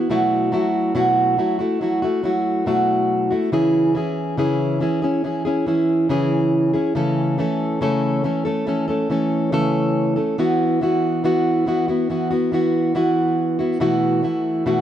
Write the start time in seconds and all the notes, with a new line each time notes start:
Already playing: B3 E4
0.10 B2 F#3 A3 E4 F#4
0.52 F#3 A3 E4 F#4
0.95 B2 F#3 A3 E4 F#4
1.38 F#3 A3 E4 F#4
1.59 A3 E4 F#4
1.81 F#3 A3 E4 F#4
2.02 A3 E4 F#4
2.23 F#3 A3 E4 F#4
2.66 B2 F#3 A3 E4 F#4
3.31 A3 E4 F#4
3.52 C#3 E3 C#4 E4 G#4
3.95 E3 C#4 E4 G#4
4.37 C#3 E3 C#4 E4 G#4
4.80 E3 C#4 E4 G#4
5.02 C#4 E4 G#4
5.24 E3 C#4 E4 G#4
5.45 C#4 E4 G#4
5.67 E3 C#4 E4 G#4
6.09 C#3 E3 C#4 E4 G#4
6.73 C#4 E4 G#4
6.95 C#3 E3 A3 C#4 A4
7.38 E3 A3 C#4 A4
7.81 C#3 E3 A3 C#4 A4
8.24 E3 A3 C#4 A4
8.45 A3 C#4 A4
8.67 E3 A3 C#4 A4
8.88 A3 C#4 A4
9.10 E3 A3 C#4 A4
9.52 C#3 E3 A3 C#4 A4
10.16 A3 C#4 A4
10.38 E3 B3 E4 F#4
10.81 E3 B3 E4 F#4
11.24 E3 B3 E4 F#4
11.66 E3 B3 E4 F#4
11.88 B3 E4 F#4
12.10 E3 B3 E4 F#4
12.31 B3 E4 F#4
12.52 E3 B3 E4 F#4
12.95 E3 B3 E4 F#4
13.59 B3 E4 F#4
13.80 B2 E3 A3 E4 F#4
14.23 E3 A3 E4 F#4
14.66 B2 E3 A3 E4 F#4